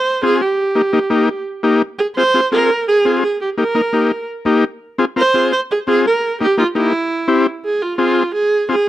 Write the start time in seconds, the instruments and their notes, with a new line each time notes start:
Already playing: viola C5
0.23 transistor combo organ C4 F4 G#4, viola G#4
0.41 viola G4
0.75 transistor combo organ A#3 D#4 G4
0.93 transistor combo organ A#3 D#4 G4
1.10 transistor combo organ A#3 D#4 G4
1.63 transistor combo organ A#3 D#4 G4
1.99 viola G#4
2.15 transistor combo organ C4 F4 G#4, viola C5
2.34 transistor combo organ C4 F4 G#4
2.52 transistor combo organ C4 F4 G#4, viola A#4
2.88 viola G#4
3.05 transistor combo organ C4 F4 G#4
3.24 viola G#4
3.41 viola G4
3.57 transistor combo organ A#3 D#4 G4, viola A#4
3.75 transistor combo organ A#3 D#4 A#4
3.93 transistor combo organ A#3 D#4 G4
4.45 transistor combo organ A#3 D#4 G4
4.98 transistor combo organ C4 F4 G#4
5.16 transistor combo organ C4 F4 A#4, viola C5
5.34 transistor combo organ C4 F4 G#4
5.52 viola C5
5.71 viola G#4
5.87 transistor combo organ C4 F4 G#4, viola G#4
6.07 viola A#4
6.41 transistor combo organ A#3 D#4 G4, viola G4
6.58 transistor combo organ A#3 D#4 G4, viola F4
6.75 transistor combo organ A#3 D#4 G4, viola E4
7.28 transistor combo organ C4 E4 G4
7.65 viola G#4
7.82 viola F4
7.98 transistor combo organ C4 F4 G#4, viola F4
8.35 viola G#4
8.69 transistor combo organ C4 F4 G#4, viola G#4